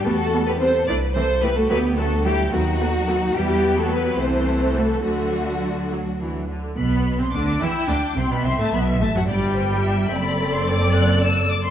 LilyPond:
<<
  \new Staff \with { instrumentName = "Violin section" } { \time 6/8 \key g \major \tempo 4. = 72 fis'8. g'16 a'8 b'8 a'8 g'16 fis'16 | g'8 fis'8 e'8 dis'4. | e'8. fis'16 g'8 a'4 fis'8 | d'2~ d'8 r8 |
b''8. c'''16 d'''8 e'''8 d'''8 c'''16 b''16 | c'''16 a''16 b''8 a''16 fis''16 g''4. | b''8. c'''16 d'''8 fis'''8 e'''8 d'''16 c'''16 | }
  \new Staff \with { instrumentName = "Violin section" } { \time 6/8 \key g \major a'8. b'16 c''8 d''8 c''8 b'16 a'16 | b'8 a'8 g'8 fis'4. | g'8. a'16 b'8 c''4 a'8 | fis'2~ fis'8 r8 |
r4. g''4. | e''4. d''8 c''8 e''8 | d''2. | }
  \new Staff \with { instrumentName = "Viola section" } { \time 6/8 \key g \major << { b8 b8 b8 a8 a8 a8 | a8 a8 a8 b8 b8 b8 | b4. a4. | a4. fis8 e8 d8 |
b8. c'16 d'8 e'8 d'8 c'16 b16 | c'16 a16 b8 a16 fis16 g4. | a'2. | } \\ { g8 g8 g8 e8 e8 e8 | fis8 fis8 fis8 a8 a8 a8 | g8. fis8. e4. | d4. r4. |
r2. | r2. | c'2. | } >> }
  \new Staff \with { instrumentName = "Cello section" } { \clef bass \time 6/8 \key g \major a8. b16 c'8 d'8 c'8 b16 a16 | b8 a8 g8 fis4. | g8. a16 b8 c'4 a8 | fis2~ fis8 r8 |
b,8. c16 d8 e8 d8 c16 b,16 | c16 a,16 b,8 a,16 fis,16 g,4. | fis,2. | }
  \new Staff \with { instrumentName = "Double bass section" } { \clef bass \time 6/8 \key g \major e,4. c,4. | d,4. dis,4. | e,4. c,4. | d,2~ d,8 r8 |
b,,8. r16 d,8 e,8 d,8 c,16 r16 | c,16 r16 b,,8 a,,16 r16 g,,4. | fis,,2. | }
>>